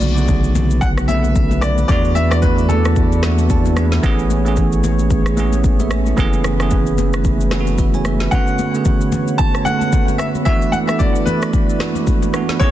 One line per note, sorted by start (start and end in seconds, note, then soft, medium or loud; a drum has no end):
0.00 1.85 B1 medium
0.00 0.19 C#3 medium
0.00 0.16 D3 medium
0.00 0.17 A3 medium
0.00 8.28 A3 medium
0.00 0.18 B3 medium
0.00 1.87 B3 medium
0.00 0.20 F#4 loud
0.00 3.99 B4 medium
0.00 0.85 D5 loud
0.00 high conga medium
0.00 shaker medium
0.16 0.92 C#3 medium
0.16 0.91 D3 medium
0.16 0.91 A3 medium
0.16 0.92 B3 medium
0.16 0.24 F#4 medium
0.16 shaker medium
0.26 0.96 G#4 medium
0.26 kick medium
0.26 low conga medium
0.26 shaker medium
0.44 shaker medium
0.55 high conga medium
0.55 low conga medium
0.55 shaker medium
0.71 shaker medium
0.81 0.87 F#5 loud
0.81 kick loud
0.81 shaker medium
0.97 cross-stick medium
0.97 shaker medium
1.08 1.74 D3 medium
1.08 1.75 A3 medium
1.08 1.75 B3 medium
1.08 1.76 C#4 medium
1.08 1.76 A4 medium
1.08 1.64 E5 loud
1.08 high conga medium
1.08 shaker medium
1.24 high conga medium
1.24 shaker medium
1.36 kick loud
1.36 shaker medium
1.51 high conga medium
1.51 shaker medium
1.61 1.87 D5 loud
1.61 cross-stick medium
1.61 high conga medium
1.61 shaker medium
1.78 high conga medium
1.78 shaker medium
1.88 3.99 E2 medium
1.88 2.22 E3 medium
1.88 2.22 A3 medium
1.88 2.23 B3 medium
1.88 2.23 D4 medium
1.88 6.14 E4 medium
1.88 2.23 F#4 loud
1.88 2.16 D5 loud
1.88 4.01 D5 medium
1.88 kick loud
1.88 shaker medium
2.05 shaker soft
2.15 2.32 E5 medium
2.15 high conga medium
2.15 shaker medium
2.31 3.05 E3 medium
2.31 3.06 A3 medium
2.31 3.06 B3 medium
2.31 3.06 D4 medium
2.31 3.07 F#4 medium
2.31 2.36 D5 medium
2.31 cross-stick loud
2.31 shaker medium
2.42 2.70 B4 medium
2.42 kick medium
2.42 low conga medium
2.42 shaker medium
2.58 shaker medium
2.69 3.72 A4 medium
2.69 high conga medium
2.69 low conga medium
2.69 shaker medium
2.85 cross-stick medium
2.85 shaker medium
2.96 kick medium
2.96 shaker medium
3.12 shaker medium
3.22 3.67 E3 medium
3.22 3.68 A3 medium
3.22 3.68 B3 medium
3.22 3.68 D4 medium
3.22 3.69 F#4 medium
3.22 cross-stick medium
3.22 snare medium
3.22 high conga medium
3.22 shaker medium
3.38 high conga medium
3.38 shaker medium
3.50 3.75 A5 medium
3.50 kick loud
3.50 shaker medium
3.65 high conga medium
3.65 shaker medium
3.76 3.99 E3 medium
3.76 3.99 A3 medium
3.76 3.99 B3 medium
3.76 4.00 D4 medium
3.76 4.00 G#4 medium
3.76 4.02 F#5 medium
3.76 cross-stick medium
3.76 high conga medium
3.76 shaker medium
3.92 snare medium
3.92 high conga medium
3.92 shaker soft
4.02 6.14 A1 medium
4.02 4.36 E3 loud
4.02 4.36 A3 loud
4.02 4.37 B3 loud
4.02 4.37 C#4 loud
4.02 6.15 G#4 medium
4.02 4.38 G#4 loud
4.02 6.15 C#5 medium
4.02 kick loud
4.02 shaker medium
4.19 shaker soft
4.30 high conga medium
4.30 shaker medium
4.45 5.19 E3 medium
4.45 5.20 A3 medium
4.45 5.20 B3 medium
4.45 5.21 C#4 medium
4.45 5.21 G#4 loud
4.45 shaker medium
4.57 kick medium
4.57 low conga medium
4.57 shaker medium
4.72 shaker medium
4.84 high conga medium
4.84 low conga medium
4.84 shaker medium
4.99 shaker medium
5.10 kick loud
5.10 shaker medium
5.26 cross-stick medium
5.26 shaker medium
5.36 6.03 E3 medium
5.36 6.03 A3 medium
5.36 6.04 B3 medium
5.36 6.04 C#4 medium
5.36 5.65 G#4 loud
5.36 high conga medium
5.36 shaker medium
5.53 high conga medium
5.53 shaker medium
5.64 kick loud
5.64 shaker medium
5.80 5.91 B4 medium
5.80 5.91 E5 medium
5.80 high conga medium
5.80 shaker medium
5.91 6.06 G#4 medium
5.91 6.06 C#5 medium
5.91 cross-stick loud
5.91 high conga medium
5.91 shaker medium
6.06 6.33 E4 medium
6.06 6.32 A4 medium
6.06 high conga medium
6.06 shaker medium
6.17 8.28 F#1 medium
6.17 6.50 E3 loud
6.17 6.51 A3 loud
6.17 6.51 B3 loud
6.17 6.51 C#4 loud
6.17 8.30 E4 medium
6.17 8.30 G#4 medium
6.17 6.52 G#4 loud
6.17 8.30 B4 medium
6.17 kick loud
6.17 shaker medium
6.33 shaker soft
6.44 cross-stick loud
6.44 high conga medium
6.44 shaker medium
6.59 7.34 E3 medium
6.59 7.34 A3 medium
6.59 7.35 B3 medium
6.59 7.35 C#4 medium
6.59 7.35 G#4 loud
6.59 cross-stick medium
6.59 shaker medium
6.71 kick medium
6.71 low conga medium
6.71 shaker medium
6.86 shaker medium
6.98 high conga medium
6.98 low conga medium
6.98 shaker medium
7.13 cross-stick medium
7.13 shaker medium
7.24 kick loud
7.24 shaker medium
7.41 shaker medium
7.51 7.96 E3 medium
7.51 7.96 A3 medium
7.51 7.97 B3 medium
7.51 7.97 C#4 medium
7.51 7.60 E4 medium
7.51 cross-stick medium
7.51 snare medium
7.51 high conga medium
7.51 shaker medium
7.60 7.83 F#4 loud
7.67 high conga medium
7.67 shaker medium
7.78 7.94 B4 medium
7.78 7.94 E5 medium
7.78 kick loud
7.78 shaker medium
7.94 8.05 C#5 medium
7.94 8.05 G#5 medium
7.94 high conga medium
7.94 shaker medium
8.05 8.20 B4 medium
8.05 8.20 E5 medium
8.05 cross-stick medium
8.05 high conga medium
8.05 shaker medium
8.20 8.33 F#4 medium
8.20 8.47 B4 medium
8.20 snare medium
8.20 high conga medium
8.20 shaker medium
8.31 8.65 D3 medium
8.31 10.44 D3 medium
8.31 8.65 A3 medium
8.31 12.71 A3 medium
8.31 8.65 B3 medium
8.31 8.66 C#4 medium
8.31 8.66 F#4 loud
8.31 12.57 B4 medium
8.31 10.44 C#5 medium
8.31 9.42 F#5 loud
8.31 kick loud
8.31 shaker medium
8.47 shaker soft
8.59 high conga medium
8.59 shaker medium
8.73 9.48 D3 medium
8.73 9.48 A3 medium
8.73 9.49 B3 medium
8.73 9.49 C#4 medium
8.73 9.50 G#4 medium
8.73 shaker medium
8.85 kick medium
8.85 low conga medium
8.85 shaker medium
9.01 shaker medium
9.12 high conga medium
9.12 low conga medium
9.12 shaker medium
9.28 shaker medium
9.38 9.63 A5 loud
9.38 kick medium
9.38 shaker medium
9.55 cross-stick medium
9.55 shaker medium
9.65 10.31 D3 medium
9.65 10.32 A3 medium
9.65 10.32 B3 medium
9.65 10.33 C#4 medium
9.65 10.33 A4 medium
9.65 10.15 F#5 loud
9.65 high conga medium
9.65 shaker medium
9.81 high conga medium
9.81 shaker medium
9.93 kick loud
9.93 shaker medium
10.08 high conga medium
10.08 shaker medium
10.18 10.24 E5 medium
10.18 cross-stick medium
10.18 high conga medium
10.18 shaker medium
10.35 high conga medium
10.35 shaker soft
10.45 10.79 E3 loud
10.45 10.79 A3 medium
10.45 10.80 B3 medium
10.45 10.80 D4 medium
10.45 12.71 E4 medium
10.45 10.80 F#4 loud
10.45 12.58 D5 medium
10.45 10.71 E5 loud
10.45 kick loud
10.45 shaker medium
10.62 shaker soft
10.72 10.77 F#5 medium
10.72 high conga medium
10.72 shaker medium
10.87 11.62 E3 medium
10.87 11.63 A3 medium
10.87 11.63 B3 medium
10.87 11.63 D4 medium
10.87 11.64 A4 medium
10.87 10.98 E5 medium
10.87 cross-stick medium
10.87 shaker medium
10.99 11.27 D5 medium
10.99 kick medium
10.99 low conga medium
10.99 shaker medium
11.15 shaker medium
11.26 12.29 B4 medium
11.26 high conga medium
11.26 low conga medium
11.26 shaker medium
11.42 cross-stick medium
11.42 shaker medium
11.53 kick loud
11.53 shaker medium
11.69 shaker medium
11.79 12.24 E3 medium
11.79 11.88 G#3 medium
11.79 12.25 B3 medium
11.79 12.26 D4 medium
11.79 12.26 F#4 medium
11.79 cross-stick medium
11.79 snare medium
11.79 high conga medium
11.79 shaker medium
11.87 12.28 A3 medium
11.95 high conga medium
11.95 shaker medium
12.07 kick loud
12.07 shaker medium
12.22 high conga medium
12.22 shaker medium
12.33 12.56 E3 medium
12.33 12.56 A3 medium
12.33 12.56 B3 medium
12.33 12.57 D4 medium
12.33 12.57 F#4 medium
12.33 cross-stick medium
12.33 high conga medium
12.33 shaker medium
12.49 snare medium
12.49 high conga medium
12.49 shaker medium
12.60 12.71 E3 loud
12.60 12.71 A3 medium
12.60 12.71 B3 medium
12.60 12.71 C#4 medium
12.60 12.71 G#4 medium
12.60 12.71 G#4 loud
12.60 12.71 C#5 loud
12.60 12.71 C#5 medium
12.60 kick loud
12.60 shaker medium